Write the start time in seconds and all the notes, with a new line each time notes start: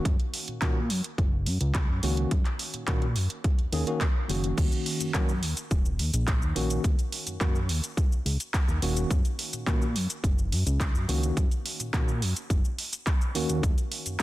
0.05 F#2, kick, closed hi-hat
0.20 closed hi-hat
0.34 open hi-hat
0.48 A#2, closed hi-hat
0.61 A#2 D#3 A#3 C#4 F#4, kick, clap, closed hi-hat
0.90 F#2, open hi-hat
1.04 closed hi-hat
1.18 F#1, kick, closed hi-hat
1.46 F#2, open hi-hat
1.61 C#2, closed hi-hat
1.75 kick, clap, closed hi-hat
1.89 F#2
2.03 C#2 D#3 A#3 C#4 F#4, open hi-hat
2.17 closed hi-hat
2.31 F#2, kick, closed hi-hat
2.45 clap, closed hi-hat
2.59 open hi-hat
2.74 A#2, closed hi-hat
2.88 A#2 D#3 A#3 C#4 F#4, kick, clap, closed hi-hat
3.02 closed hi-hat
3.16 F#2, open hi-hat
3.30 closed hi-hat
3.44 kick, closed hi-hat
3.59 D#2, closed hi-hat
3.72 D#2 D#3 A#3 C#4 G#4, open hi-hat
3.87 D#3 A#3 C#4 F#4, closed hi-hat
4.01 kick, clap, closed hi-hat
4.28 F#1 D#3 A#3 C#4 F#4, open hi-hat
4.44 closed hi-hat
4.58 D#2, kick, closed hi-hat, crash, shaker
4.72 closed hi-hat, shaker
4.86 open hi-hat
5.00 F#2, closed hi-hat, shaker
5.14 F#2 D#3 A#3 C#4 F#4, kick, clap, closed hi-hat, shaker
5.29 shaker
5.42 D#2, open hi-hat
5.57 closed hi-hat, shaker
5.71 D#1, kick, closed hi-hat, shaker
5.85 shaker
5.99 D#2, open hi-hat
6.13 A#1, closed hi-hat, shaker
6.28 kick, clap, closed hi-hat, shaker
6.42 D#2, shaker
6.55 A#1 D#3 A#3 C#4 F#4, open hi-hat
6.70 closed hi-hat, shaker
6.84 D#2, kick, closed hi-hat, shaker
6.99 closed hi-hat, shaker
7.12 open hi-hat
7.27 F#2, closed hi-hat, shaker
7.40 F#2 D#3 A#3 C#4 F#4, kick, clap, closed hi-hat, shaker
7.55 shaker
7.69 D#2, open hi-hat
7.84 closed hi-hat, shaker
7.97 kick, closed hi-hat, shaker
8.12 C#2, shaker
8.26 C#2, open hi-hat
8.40 closed hi-hat, shaker
8.54 kick, clap, closed hi-hat, shaker
8.68 D#2, shaker
8.82 D#1 D#3 A#3 C#4 F#4, open hi-hat
8.97 closed hi-hat, shaker
9.11 F#2, kick, closed hi-hat, shaker
9.25 closed hi-hat, shaker
9.39 open hi-hat
9.53 A#2, closed hi-hat, shaker
9.67 A#2 D#3 A#3 C#4 F#4, kick, clap, closed hi-hat, shaker
9.82 shaker
9.96 F#2, open hi-hat
10.10 closed hi-hat, shaker
10.24 F#1, kick, closed hi-hat, shaker
10.38 shaker
10.52 F#2, open hi-hat
10.66 C#2, closed hi-hat, shaker
10.80 kick, clap, closed hi-hat, shaker
10.95 F#2, shaker
11.08 C#2 D#3 A#3 C#4 F#4, open hi-hat
11.23 closed hi-hat, shaker
11.37 F#2, kick, closed hi-hat, shaker
11.51 closed hi-hat, shaker
11.66 open hi-hat
11.80 A#2, closed hi-hat, shaker
11.93 A#2 D#3 A#3 C#4 F#4, kick, clap, closed hi-hat, shaker
12.08 shaker
12.22 F#2, open hi-hat
12.36 closed hi-hat, shaker
12.50 F#1, kick, closed hi-hat, shaker
12.65 shaker
12.79 open hi-hat
12.93 closed hi-hat, shaker
13.07 kick, clap, closed hi-hat, shaker
13.21 shaker
13.35 D#2 D#3 A#3 C#4 F#4, open hi-hat
13.49 D#2, closed hi-hat, shaker
13.63 D#2, kick, closed hi-hat, shaker
13.78 closed hi-hat, shaker
13.92 open hi-hat
14.06 F#2, closed hi-hat, shaker